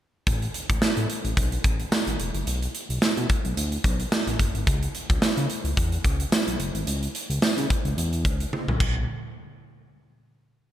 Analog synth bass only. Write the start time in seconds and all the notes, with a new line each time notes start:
0.27 A1
0.69 A1
0.82 A2
0.97 A2
1.24 A1
1.37 B1
1.64 A1
2.07 G#1
2.19 E1
2.34 F#1
2.47 B1
2.89 B1
3.02 B2
3.17 B2
3.45 B1
3.57 D2
3.84 B1
4.27 A1
4.39 F#1
4.55 G#1
4.67 C#2
5.10 C#2
5.22 C#3
5.37 C#3
5.64 C#2
5.77 E2
6.04 C#2
6.47 B1
6.59 F#1
6.75 G#1
6.87 C#2
7.30 C#2
7.42 C#3
7.57 C#3
7.85 C#2
7.97 E2
8.25 C#2
8.68 B1
8.80 B1